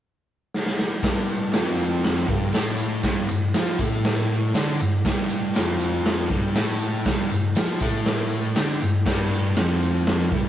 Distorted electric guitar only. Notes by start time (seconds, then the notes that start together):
1.03 G2 G3
1.53 F2 F3
2.27 G2 G3
2.53 A2 A3
3.04 G2 G3
3.29 G2
3.55 F3 F4
3.79 A2 A3
4.54 D3 D4
4.80 G2
5.05 G2 G3
5.55 F2 F3
6.30 G2 G3
6.55 A2 A3
7.06 G2 G3
7.31 G2
7.56 F3 F4
7.81 A2 A3
8.56 D3 D4
8.81 G2
9.06 G2 G3
9.56 F2 F3
10.31 G2 G3